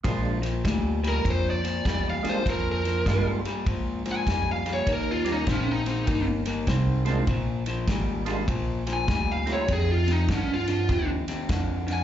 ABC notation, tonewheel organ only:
X:1
M:4/4
L:1/8
Q:"Swing" 1/4=100
K:Bbmix
V:1 name="Tonewheel organ"
[A,B,DF] z6 [A,B,DF] | z2 [A,B,DF] z4 z | z [G,B,_DE] z4 z [A,B,=DF] | z3 [A,B,DF] z3 [=A,CEF] |
z8 |]